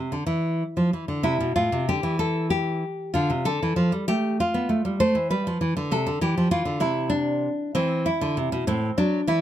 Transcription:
nylon-string guitar
Already playing: C3 E4
0.12 D3
0.27 E3
0.77 F3
0.93 E3
1.08 D3
1.23 C3 E4
1.40 B2
1.56 A2 F4
1.72 C3
1.89 D3 G4
2.03 E3
2.19 A4
2.50 G4
3.14 D3 F4
3.30 C3
3.45 D3 A4
3.63 E3
3.76 F3
3.92 G3
4.08 A3 G4
4.40 F4
4.54 B3
4.69 A3
4.85 G3
5.00 A3 C5
5.15 E3
5.31 G3 B4
5.47 F3
5.61 E3
5.77 D3
5.91 C3 A4
6.07 D3
6.21 E3 G4
6.38 F3
6.51 E3 F4
6.65 D3
6.80 C3 E4
7.10 D4
7.75 E3 C4
8.06 E4
8.21 D3
8.37 C3
8.52 B2
8.67 A2 C4
8.98 F#3 D4
9.27 E3 E4

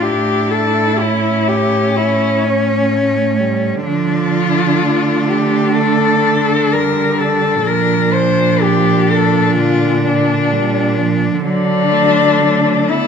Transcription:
cello
Already playing: D4
0.02 A2 E4 G4
0.51 A4
0.99 C#4 E4
1.48 G4
1.95 C#4 E4
2.44 C#4
2.91 A3
3.39 G3
3.85 D3 F3 D4 F4
4.81 A3
5.29 G4
5.77 A4
6.73 G3 A#4
7.19 A4
7.66 A#2 F3 D4 A#4
8.13 C5
8.62 G4
9.11 A4
9.56 D3 F4
10.05 D4
10.51 G3
10.97 F3
11.43 D3 F#3 D4
11.91 A3
12.40 F#3 A3
12.88 A3 B3 E4

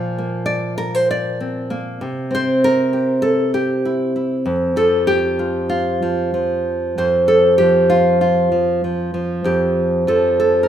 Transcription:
nylon-string guitar
Already playing: A#2 F3 A#3 F5
0.18 A#3
0.46 D5
0.78 A#4
0.95 C5
1.11 D5
1.40 C4
1.70 A#3
2.01 C3
2.31 C4 C5
2.64 A#4
2.93 G4
3.22 A4
3.54 G4
3.85 E4
4.16 E4
4.46 F2
4.76 F3 A4
5.07 G4
5.39 F4
5.69 F4
6.02 F3
6.34 F3
6.98 F2 C5
7.28 A4
7.58 F3 G4
7.90 F4
8.21 F4
8.52 F3
8.84 F3
9.14 F3
9.44 F2 G4
10.07 F3 A4
10.40 A4
10.63 A#4

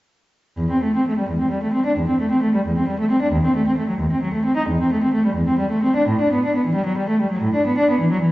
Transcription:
cello
0.57 E2
0.70 C4
0.83 A3
0.96 C4
1.08 A3
1.19 G3
1.29 E2
1.41 C4
1.51 G3
1.63 A3
1.73 C4
1.86 D4
1.98 E2
2.09 C4
2.20 A3
2.31 C4
2.42 A3
2.55 G3
2.66 E2
2.78 C4
2.88 G3
2.99 A3
3.11 C4
3.22 D4
3.32 D#2
3.45 C4
3.56 A3
3.67 C4
3.77 A3
3.89 F#3
4.00 D#2
4.12 C4
4.22 F#3
4.34 A3
4.45 C4
4.56 D#4
4.68 E2
4.81 C4
4.92 A3
5.03 C4
5.14 A3
5.26 G3
5.35 E2
5.48 C4
5.59 G3
5.71 A3
5.83 C4
5.96 D4
6.08 A2
6.21 D4
6.33 B3
6.45 D4
6.55 B3
6.66 E3
6.74 G3
6.86 F#3
6.98 G3
7.09 A3
7.21 G3
7.32 F#3
7.43 A2
7.54 D4
7.66 B3
7.78 D4
7.90 B3
8.00 E3
8.11 F#3
8.21 E3

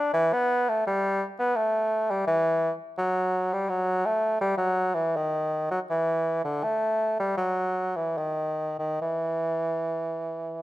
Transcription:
bassoon
Already playing: D4
0.13 E3
0.33 B3
0.69 A3
0.87 G3
1.39 B3
1.56 A3
2.10 G3
2.27 E3
2.98 F#3
3.53 G3
3.69 F#3
4.06 A3
4.41 G3
4.58 F#3
4.94 E3
5.16 D#3
5.71 F#3
5.90 E3
6.44 D3
6.63 A3
7.20 G3
7.37 F#3
7.96 E3
8.17 D#3
8.79 D#3
9.01 E3

